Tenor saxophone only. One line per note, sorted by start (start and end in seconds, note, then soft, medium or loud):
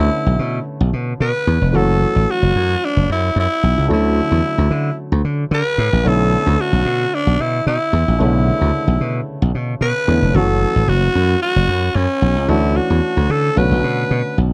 0.00 0.63 E4 medium
1.21 1.70 B4 loud
1.70 1.78 B4 medium
1.76 2.32 A4 loud
2.31 2.86 F#4 loud
2.85 3.10 D4 loud
3.12 3.35 E4 medium
3.39 3.88 E4 loud
3.93 4.95 E4 loud
5.54 6.09 B4 loud
6.08 6.62 A4 loud
6.61 7.16 F#4 loud
7.14 7.42 D4 loud
7.40 7.67 E4 medium
7.67 8.17 E4 medium
8.21 9.24 E4 medium
9.82 10.37 B4 loud
10.36 10.90 A4 loud
10.89 11.41 F#4 loud
11.42 11.97 F#4 loud
11.95 12.51 C#4 loud
12.49 12.77 E4 medium
12.76 13.32 F#4 medium
13.31 13.59 A4 loud
13.58 14.38 B4 medium